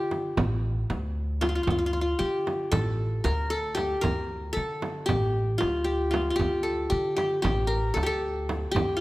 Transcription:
Already playing: upright bass D3, qanun F4 G4
0.11 frame drum
0.37 upright bass A1, frame drum
0.90 upright bass D2, frame drum
1.41 qanun F4, frame drum
1.49 qanun F4
1.55 qanun F4
1.63 upright bass D2, qanun F4
1.67 qanun F4, frame drum
1.78 qanun F4
1.86 qanun F4
1.93 qanun F4
2.01 qanun F4
2.19 upright bass D3, qanun G4
2.47 frame drum
2.72 upright bass A1, qanun A4, frame drum
3.24 upright bass D2, qanun A#4, frame drum
3.50 qanun A4
3.75 qanun G4, frame drum
4.01 upright bass D2, qanun A#4, frame drum
4.53 upright bass D3, qanun A4
4.82 frame drum
5.06 upright bass A1, qanun G4, frame drum
5.58 upright bass D2, qanun F4, frame drum
5.84 qanun G4
6.11 qanun F4, frame drum
6.30 qanun F4
6.36 upright bass D2, qanun G4, frame drum
6.63 qanun A4
6.90 upright bass D3, qanun G4
7.16 qanun G4, frame drum
7.42 upright bass A1, qanun G4, frame drum
7.67 qanun A#4
7.94 upright bass D2, qanun A4, frame drum
8.03 qanun G4 A4
8.49 frame drum
8.71 upright bass D2, qanun G4
8.76 frame drum
8.97 qanun F4

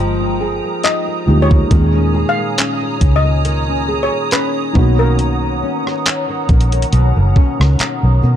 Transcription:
Already playing: fingered electric bass G1, felt piano F3 G#3 A#3 D#4 G4, nylon-string guitar F3 A#3 D#4 G#4, analog synth pad G#3 G5 A#5 D#6, steel pan D#5
0.21 nylon-string guitar D#4
0.41 nylon-string guitar G#4
0.64 nylon-string guitar A#3
0.83 nylon-string guitar D#4, steel pan D#5, clap, closed hi-hat
1.07 nylon-string guitar A#3
1.27 fingered electric bass D2, felt piano F3 G#3 A#3 D#4 G4, nylon-string guitar D#4
1.42 steel pan C#5
1.51 nylon-string guitar A#3, kick
1.69 fingered electric bass D#2, felt piano A#2 D#3 G#3 C#4, nylon-string guitar D#3, analog synth pad C#5 G#5, kick, closed hi-hat
1.74 felt piano G#4
1.94 nylon-string guitar C#4
2.14 nylon-string guitar G#4
2.29 steel pan F5
2.38 nylon-string guitar A#3
2.58 nylon-string guitar C#4, clap, closed hi-hat
2.81 nylon-string guitar A#3
3.01 fingered electric bass C#2, nylon-string guitar C#4, kick, closed hi-hat
3.16 steel pan D#5
3.25 nylon-string guitar A#3
3.45 nylon-string guitar D#3, closed hi-hat
3.68 nylon-string guitar C#4
3.88 nylon-string guitar G#4
4.03 steel pan C#5
4.12 nylon-string guitar A#3
4.31 nylon-string guitar C#4, steel pan B4, clap, closed hi-hat
4.73 fingered electric bass B1, nylon-string guitar B2, felt piano D#3 A#3 B3 C#4, analog synth pad F#5, kick
4.78 felt piano F#4
4.99 nylon-string guitar D#3, steel pan A#4
5.19 closed hi-hat
5.42 nylon-string guitar A#3
5.62 nylon-string guitar C#4
5.86 nylon-string guitar D#3, cross-stick
6.06 nylon-string guitar A#3, clap, closed hi-hat
6.29 nylon-string guitar D#3
6.49 fingered electric bass A#1, nylon-string guitar A#3, kick, closed hi-hat
6.61 closed hi-hat
6.72 nylon-string guitar D#3, closed hi-hat
6.82 closed hi-hat
6.93 fingered electric bass B1, nylon-string guitar B2, closed hi-hat
7.16 fingered electric bass F#1, nylon-string guitar A#3
7.36 nylon-string guitar C#4, kick
7.60 fingered electric bass C#2, nylon-string guitar D#3, cross-stick
7.79 nylon-string guitar A#3, clap, closed hi-hat
8.03 fingered electric bass B1, nylon-string guitar D#3
8.23 fingered electric bass B2, nylon-string guitar A#3

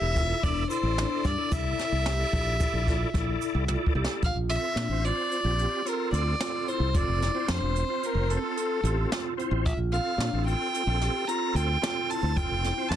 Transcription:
Already playing: violin E5
0.01 fingered electric bass E1, tonewheel organ E4 A4 E5
0.15 vibraphone F4, kick, closed hi-hat, shaker
0.42 fingered electric bass E1, vibraphone D4, violin D5, kick, closed hi-hat
0.69 vibraphone E4, tonewheel organ E4 A4 D5, violin C5, closed hi-hat, shaker
0.83 fingered electric bass A1
0.96 vibraphone D4, snare, closed hi-hat
1.24 fingered electric bass G2, vibraphone D4, violin D5, kick, snare, closed hi-hat, shaker
1.37 tonewheel organ E4 A4 D5
1.50 fingered electric bass C2, tonewheel organ E4 A4 D5, vibraphone E4, violin E5, kick, closed hi-hat, shaker
1.78 vibraphone E4, snare, closed hi-hat
1.92 fingered electric bass C2
2.05 vibraphone G4, snare, closed hi-hat
2.19 tonewheel organ E4 A4 D5
2.32 fingered electric bass A#1, vibraphone G4, kick, closed hi-hat
2.59 tonewheel organ E4 A4 D5, kick, closed hi-hat, shaker
2.73 fingered electric bass A#1
2.86 vibraphone F4, kick, snare, closed hi-hat, shaker
3.13 fingered electric bass A#1, vibraphone E4, tonewheel organ E4 A4 D5, kick, snare, closed hi-hat
3.41 closed hi-hat, shaker
3.55 fingered electric bass C2
3.68 tonewheel organ E4 A4 D5, vibraphone F4, high tom, shaker
3.86 kick
3.95 fingered electric bass C2, tonewheel organ E4 A4 D5, vibraphone G4
4.04 snare
4.22 fingered electric bass A#1, vibraphone F4, violin F5, kick, closed hi-hat
4.35 fingered electric bass A#1
4.50 tonewheel organ C4 F4 A4, violin E5, closed hi-hat
4.76 fingered electric bass A#2, vibraphone D4, snare, closed hi-hat
4.89 fingered electric bass A1, tonewheel organ C4 F4 C5
5.03 vibraphone F4, violin D5, closed hi-hat
5.31 vibraphone F4, closed hi-hat
5.44 fingered electric bass A#1, tonewheel organ C4 F4 G4
5.57 vibraphone G4, closed hi-hat
5.84 tonewheel organ C4 F4 A4, vibraphone F4, closed hi-hat
5.88 violin A#4
6.12 fingered electric bass D2, violin D5, closed hi-hat
6.39 tonewheel organ C4 F4 A4, vibraphone F4, snare, closed hi-hat
6.66 vibraphone E4, violin C5, closed hi-hat
6.80 fingered electric bass C2
6.93 fingered electric bass F1, tonewheel organ C4 F4 A4, vibraphone F4, violin D5, kick, closed hi-hat
7.07 fingered electric bass F1
7.21 vibraphone E4, snare, closed hi-hat
7.34 tonewheel organ C4 F4 C5
7.48 fingered electric bass F2, vibraphone D4, violin C5, snare, closed hi-hat
7.61 fingered electric bass E1
7.76 vibraphone C4, closed hi-hat
7.89 tonewheel organ C4 F4 C5
8.03 violin A#4, closed hi-hat
8.15 fingered electric bass F1
8.30 vibraphone C4, violin A4, closed hi-hat
8.43 tonewheel organ C4 F4 A4
8.57 vibraphone A4, closed hi-hat
8.83 fingered electric bass A1, tonewheel organ C4 F4 A4, vibraphone G4, closed hi-hat
9.11 vibraphone F4, snare, closed hi-hat
9.37 tonewheel organ C4 F4 C5, vibraphone E4, closed hi-hat
9.51 fingered electric bass A1
9.65 fingered electric bass A#1, vibraphone F4, violin E5, kick, closed hi-hat
9.77 fingered electric bass A#1
9.92 tonewheel organ C4 F4 A4, violin F5, closed hi-hat
10.18 fingered electric bass A#2, vibraphone D4, snare, closed hi-hat
10.33 fingered electric bass A1, tonewheel organ C4 F4 A4
10.47 vibraphone F4, violin G5, closed hi-hat
10.73 vibraphone F4, closed hi-hat
10.87 fingered electric bass A#1, tonewheel organ C4 F4 A4
11.01 vibraphone G4, snare, closed hi-hat
11.28 tonewheel organ C4 F4 A4, vibraphone F4, violin A#5, closed hi-hat
11.55 fingered electric bass D2, violin G5, closed hi-hat
11.82 tonewheel organ C4 F4 A4, vibraphone F4, snare, closed hi-hat
12.09 vibraphone E4, violin A5, closed hi-hat
12.23 fingered electric bass D2
12.36 fingered electric bass F1, tonewheel organ C4 F4 A4, vibraphone F4, violin G5, kick, closed hi-hat
12.50 fingered electric bass F1
12.63 vibraphone E4, snare, closed hi-hat
12.77 tonewheel organ C4 F4 C5
12.89 fingered electric bass F2, vibraphone D4, violin A5, snare, closed hi-hat

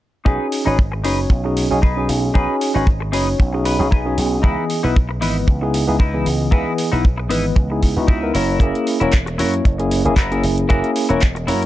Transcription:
0.25 slap bass B1, tine electric piano C#4 D#4 F#4 G#4, clean electric guitar D#4 G#4 B4, kick
0.52 open hi-hat
0.65 slap bass G#1, tine electric piano C#4 D#4 F#4 C#5, clean electric guitar D#4 G#4 B4
0.79 kick
0.92 muted clean electric guitar stroke
1.04 slap bass F#1, tine electric piano C#4 D#4 F#4 C#5, clean electric guitar D#4 G#4 B4, open hi-hat
1.30 slap bass B1, muted clean electric guitar stroke, kick
1.44 tine electric piano C#4 D#4 F#4 G#4, muted clean electric guitar stroke
1.57 open hi-hat
1.70 slap bass B1, tine electric piano C#4 D#4 F#4 G#4
1.82 clean electric guitar D#4 G#4 B4, kick
1.97 tine electric piano C#4 D#4 F#4 G#4
2.09 slap bass B1, open hi-hat
2.34 slap bass B1, tine electric piano C#4 D#4 F#4 G#4, clean electric guitar D#4 G#4 B4, kick
2.61 open hi-hat
2.74 slap bass G#1, tine electric piano C#4 D#4 F#4 C#5, clean electric guitar D#4 G#4 B4
2.87 kick
3.00 muted clean electric guitar stroke
3.12 slap bass F#1, tine electric piano C#4 D#4 F#4 C#5, clean electric guitar D#4 G#4 B4, open hi-hat
3.39 slap bass B1, muted clean electric guitar stroke, kick
3.53 tine electric piano C#4 D#4 F#4 G#4, muted clean electric guitar stroke
3.65 clean electric guitar B4, open hi-hat
3.79 slap bass B1, tine electric piano C#4 D#4 F#4 G#4
3.91 clean electric guitar D#4 G#4 B4 G#5, kick
4.05 tine electric piano C#4 D#4 F#4 G#4
4.18 slap bass B1, open hi-hat
4.43 slap bass C#2, tine electric piano E3 B3 G#4 D#5, clean electric guitar D#4 E4 B4, kick
4.70 open hi-hat
4.83 slap bass B1, tine electric piano B3 D#4 E4 B4, clean electric guitar D#4 E4 B4
4.96 kick
5.09 muted clean electric guitar stroke
5.21 slap bass G#1, tine electric piano E3 B3 B4 D#5, clean electric guitar D#4 E4 B4, open hi-hat
5.47 slap bass C#2, muted clean electric guitar stroke, kick
5.61 tine electric piano B3 D#4 E4 G#4, muted clean electric guitar stroke
5.74 open hi-hat
5.88 slap bass C#2, tine electric piano B3 D#4 E4 G#4
5.99 clean electric guitar D#4 E4 B4, kick
6.14 tine electric piano E3 B3 G#4 D#5
6.26 slap bass C#2, open hi-hat
6.51 tine electric piano E3 B3 G#4 D#5, clean electric guitar D#4 E4 B4, kick
6.78 open hi-hat
6.92 slap bass B1, tine electric piano B3 D#4 E4 B4, clean electric guitar D#4 E4 B4
7.05 kick
7.18 muted clean electric guitar stroke
7.29 slap bass G#1, tine electric piano E3 B3 B4 D#5, clean electric guitar D#4 E4 B4, open hi-hat
7.56 slap bass C#2, muted clean electric guitar stroke, kick
7.70 tine electric piano B3 D#4 E4 G#4, muted clean electric guitar stroke
7.83 kick, open hi-hat
7.96 slap bass C#2, tine electric piano B3 D#4 E4 F#4
8.08 clean electric guitar D#4 E4 B4, kick
8.22 tine electric piano B3 D#4 E4 A#4
8.34 slap bass F#1, tine electric piano A#3 C#4 E4 C#5, clean electric guitar E4 F#4 A#4, open hi-hat
8.60 slap bass F#1, tine electric piano A#3 C#4 E4 G#4, kick, closed hi-hat
8.75 closed hi-hat
8.87 open hi-hat
9.00 slap bass E1, tine electric piano A#3 C#4 E4 C#5, clean electric guitar E4 F#4 A#4, closed hi-hat
9.13 kick, clap, closed hi-hat
9.26 muted clean electric guitar stroke, closed hi-hat
9.38 slap bass F#2, tine electric piano A#3 C#4 E4 C#5, clean electric guitar E4 F#4 A#4, open hi-hat
9.54 closed hi-hat
9.64 slap bass F#1, muted clean electric guitar stroke, kick, closed hi-hat
9.78 tine electric piano A#3 C#4 E4 G#4, muted clean electric guitar stroke, closed hi-hat
9.91 open hi-hat
10.05 slap bass F#1, tine electric piano A#3 C#4 E4 G#4, closed hi-hat
10.16 clean electric guitar E4 F#4 A#4, kick, clap, closed hi-hat
10.31 tine electric piano A#3 C#4 E4 G#4, closed hi-hat
10.44 slap bass F#1, open hi-hat
10.58 closed hi-hat
10.69 tine electric piano A#3 C#4 E4 G#4, clean electric guitar E4 F#4 A#4, kick, closed hi-hat
10.84 closed hi-hat
10.96 open hi-hat
11.09 slap bass E1, tine electric piano A#3 C#4 E4 C#5, clean electric guitar E4 F#4 A#4, closed hi-hat
11.22 kick, clap, closed hi-hat
11.35 muted clean electric guitar stroke, closed hi-hat
11.47 slap bass F#2, tine electric piano A#3 C#4 E4 C#5, clean electric guitar E4 F#4 A#4, open hi-hat
11.62 closed hi-hat

